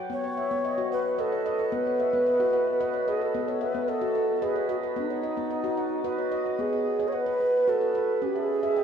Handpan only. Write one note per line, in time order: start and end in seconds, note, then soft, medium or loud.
0.00 0.24 F#5 medium
0.00 0.11 G5 medium
0.10 0.37 B3 medium
0.24 0.65 C#5 medium
0.37 0.78 E5 medium
0.51 0.78 B3 medium
0.65 1.05 D#5 medium
0.78 1.05 F#4 medium
0.92 1.32 F#5 medium
1.18 1.46 B4 medium
1.18 1.45 D#5 medium
1.32 1.73 C#5 medium
1.46 1.73 D#5 medium
1.59 2.00 B4 medium
1.72 2.12 B3 medium
1.87 2.27 C#5 medium
2.00 2.40 E5 medium
2.13 2.40 B3 medium
2.26 2.67 D#5 medium
2.40 2.67 F#4 medium
2.53 2.94 F#5 medium
2.80 3.08 B4 medium
2.80 3.07 D#5 medium
2.94 3.34 C#5 medium
3.08 3.35 D#5 medium
3.21 3.62 B4 medium
3.35 3.62 B3 medium
3.48 3.89 C#5 medium
3.61 4.02 E5 medium
3.75 4.02 B3 medium
3.88 4.29 D#5 medium
4.01 4.29 F#4 medium
4.15 4.56 F#5 medium
4.42 4.70 B4 medium
4.42 4.68 D#5 medium
4.56 4.97 C#5 medium
4.69 4.97 D#5 medium
4.83 5.24 B4 medium
4.96 5.24 B3 medium
5.10 5.51 C#5 medium
5.23 5.49 D#5 medium
5.37 5.64 B3 medium
5.51 5.92 D#5 medium
5.64 5.91 F#4 medium
5.77 6.19 F#5 medium
6.04 6.32 B4 medium
6.04 6.30 D#5 medium
6.18 6.59 C#5 medium
6.32 6.59 D#5 medium
6.46 6.73 B4 medium
6.59 7.53 B3 medium
6.73 6.98 D#5 medium
6.99 7.41 C#5 medium
6.99 7.27 D#5 medium
7.12 7.54 F#5 medium
7.26 7.39 B4 medium
7.40 7.80 B4 medium
7.68 7.95 F#4 medium
7.81 7.94 B4 medium
7.95 8.22 B4 medium
8.22 8.49 C#4 medium
8.35 8.62 E5 medium
8.63 8.84 D#5 medium
8.63 8.84 E5 medium
8.77 8.84 G5 medium